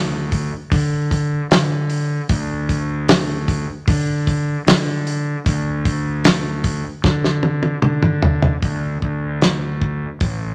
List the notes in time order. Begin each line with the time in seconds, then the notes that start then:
Already playing: D2
0.32 kick, open hi-hat
0.72 D3, kick, open hi-hat
1.11 kick, open hi-hat
1.51 D3, snare, open hi-hat
1.90 open hi-hat
2.29 D2, kick, open hi-hat
2.69 kick, open hi-hat
3.08 snare, open hi-hat
3.48 kick, open hi-hat
3.88 D3, kick, open hi-hat
4.27 kick, open hi-hat
4.67 D3, snare, open hi-hat
5.07 open hi-hat
5.46 D2, kick, open hi-hat
5.85 kick, open hi-hat
6.24 snare, open hi-hat
6.64 kick, open hi-hat
7.04 D3, kick, snare
7.24 snare
7.43 high tom
7.63 high tom
7.82 D3, mid tom
8.03 mid tom
8.22 floor tom
8.42 floor tom
8.62 D2, kick, open hi-hat
9.02 D2, kick
9.41 snare, open hi-hat
9.81 kick
10.20 A1, kick, open hi-hat